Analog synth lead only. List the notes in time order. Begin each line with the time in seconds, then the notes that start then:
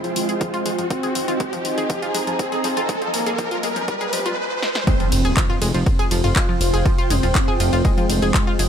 Already playing: G#3
0.90 C4
2.39 C4
3.14 A#3
3.88 G3
4.87 C4
6.36 F4
7.10 C4
7.85 G#3